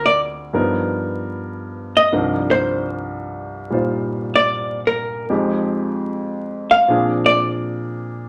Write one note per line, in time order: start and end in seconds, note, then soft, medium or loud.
0.00 0.51 D2 medium
0.00 0.53 D3 soft
0.00 0.54 C4 soft
0.00 0.56 F4 soft
0.00 0.57 G#4 medium
0.06 0.20 D5 medium
0.53 2.11 G2 medium
0.53 2.11 F3 medium
0.53 2.13 B3 medium
0.53 2.12 D#4 medium
0.53 2.12 A#4 medium
1.97 2.41 D#5 medium
2.12 5.29 C2 medium
2.12 5.29 G2 soft
2.12 5.28 F3 soft
2.12 5.29 D4 soft
2.12 3.70 D#4 soft
2.12 5.30 A#4 medium
2.51 2.88 C5 medium
3.70 5.29 A#2 soft
3.70 5.29 G3 soft
3.70 5.29 D#4 soft
3.70 5.30 F4 soft
3.70 5.31 C5 soft
4.36 4.79 D5 medium
4.87 5.25 A#4 medium
5.30 6.89 F2 medium
5.30 6.87 F3 soft
5.30 6.90 G#3 medium
5.30 6.90 D#4 soft
5.30 6.89 G4 medium
6.71 7.17 F5 medium
6.88 8.29 A#2 medium
6.88 8.29 F3 medium
6.88 8.29 C4 medium
6.88 8.29 D4 medium
6.88 8.29 G#4 medium
7.26 7.50 D5 medium